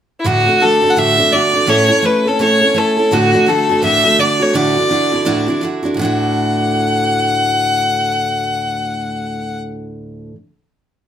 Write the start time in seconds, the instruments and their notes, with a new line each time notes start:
0.20 fiddle E4
0.24 steel-string acoustic guitar D2 A2 D3 A3 D4 F#4, fiddle F#4
0.46 steel-string acoustic guitar D3 A3 D4 F#4
0.60 steel-string acoustic guitar D3 A3 D4 F#4, fiddle A4
0.81 steel-string acoustic guitar D3 A3 D4 F#4
0.91 fiddle F#5
0.96 steel-string acoustic guitar D2 A2 D3 A3 D4 F#4, fiddle E5
1.17 steel-string acoustic guitar D3 A3 D4 F#4
1.32 steel-string acoustic guitar D3 A3 D4 F#4, fiddle D5
1.53 steel-string acoustic guitar D3 A3 D4 F#4
1.66 steel-string acoustic guitar A2 A3 C#4 E4 A4, fiddle C#5
1.88 steel-string acoustic guitar C#4 E4 A4
2.02 steel-string acoustic guitar A3 C#4 E4 A4, fiddle B4
2.26 steel-string acoustic guitar C#4 E4 A4, fiddle A4
2.39 steel-string acoustic guitar A2 A3 C#4 E4 A4, fiddle C#5
2.61 steel-string acoustic guitar C#4 E4 A4
2.74 steel-string acoustic guitar A3 C#4 E4 A4, fiddle A4
2.97 steel-string acoustic guitar C#4 E4 A4
3.11 steel-string acoustic guitar D2 A2 D3 A3 D4 F#4, fiddle F#4
3.33 steel-string acoustic guitar D3 A3 D4 F#4
3.46 steel-string acoustic guitar D3 A3 D4 F#4, fiddle A4
3.69 steel-string acoustic guitar D3 A3 D4 F#4
3.82 steel-string acoustic guitar D2 A2 D3 A3 D4 F#4, fiddle E5
4.04 steel-string acoustic guitar D3 A3 D4 F#4
4.19 steel-string acoustic guitar D3 A3 D4 F#4, fiddle D5
4.40 steel-string acoustic guitar D3 A3 D4 F#4, fiddle C#5
4.53 steel-string acoustic guitar D2 A2 D3 D4 E4 F#4, fiddle D5
4.76 steel-string acoustic guitar D3 D4 E4 F#4
4.90 steel-string acoustic guitar D3 D4 E4 F#4
5.12 steel-string acoustic guitar D3 D4 E4 F#4
5.25 steel-string acoustic guitar D2 A2 D3 D4 E4 F#4
5.46 steel-string acoustic guitar D3 D4 E4 F#4
5.61 steel-string acoustic guitar D3 D4 E4 F#4
5.83 steel-string acoustic guitar D3 D4 E4 F#4
5.94 steel-string acoustic guitar D2 A2, fiddle F#5
5.99 steel-string acoustic guitar D3 D4 E4
6.05 steel-string acoustic guitar F#4